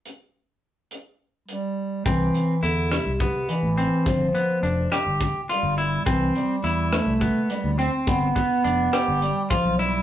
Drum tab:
HH |x--x-x-|xxxxxxx|xxxxxxx|xxxxxxx|
SD |-------|---r---|---r---|---r---|
BD |-------|o---o--|o---o--|o---o--|

HH |xxxxxxx|
SD |---r---|
BD |oo---o-|